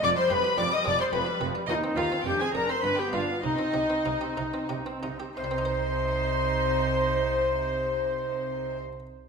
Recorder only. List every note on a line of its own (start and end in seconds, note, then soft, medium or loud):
0.03 0.17 D5 loud
0.18 0.33 C5 loud
0.32 0.58 B4 loud
0.58 0.64 D5 medium
0.73 0.79 D#5 medium
0.87 1.00 D5 loud
1.00 1.12 C5 medium
1.13 1.19 B4 medium
1.70 1.76 F4 medium
1.75 1.99 D#4 medium
1.97 2.26 F4 medium
2.27 2.43 G4 medium
2.41 2.55 G#4 medium
2.55 2.72 A#4 medium
2.70 2.85 C5 medium
2.84 3.01 B4 medium
2.99 3.16 G4 medium
3.14 3.44 F4 medium
3.44 4.68 D#4 medium
5.37 8.78 C5 medium